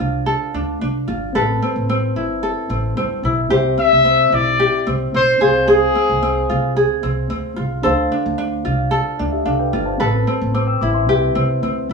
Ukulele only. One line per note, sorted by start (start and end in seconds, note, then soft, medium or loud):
0.00 0.53 D4 medium
0.00 1.06 F4 medium
0.00 1.35 C5 medium
0.26 1.35 A4 medium
0.54 0.80 D4 medium
0.81 1.41 D4 medium
1.08 1.40 F4 medium
1.35 2.42 A4 medium
1.35 3.50 B4 medium
1.62 1.89 C4 medium
1.89 2.70 C4 medium
2.16 3.25 E4 medium
2.43 3.51 A4 medium
2.70 2.97 C4 medium
2.97 3.24 C4 medium
3.25 3.57 E4 medium
3.50 4.58 G4 medium
3.50 5.68 C5 medium
3.78 4.05 C4 medium
4.05 4.32 C4 medium
4.32 4.86 E4 medium
4.60 5.40 G4 medium
4.87 5.14 C4 medium
5.14 5.95 C4 medium
5.41 5.66 G#4 medium
5.68 6.49 G#4 medium
5.68 7.84 C5 medium
5.95 6.22 C4 medium
6.23 7.03 C4 medium
6.50 6.76 F4 medium
6.77 7.83 G#4 medium
7.03 7.29 C4 medium
7.30 7.56 C4 medium
7.56 8.11 F4 medium
7.83 8.64 A4 medium
7.83 10.00 C5 soft
8.12 8.37 D4 medium
8.38 9.18 D4 medium
8.65 9.72 F4 medium
8.91 9.98 A4 medium
9.19 9.44 D4 medium
9.46 10.06 D4 medium
9.73 10.06 F4 medium
10.00 11.08 A4 medium
10.00 11.08 B4 medium
10.27 10.54 C4 medium
10.55 11.35 C4 medium
10.82 11.93 E4 medium
11.09 11.93 G4 medium
11.35 11.62 C4 medium
11.63 11.90 C4 medium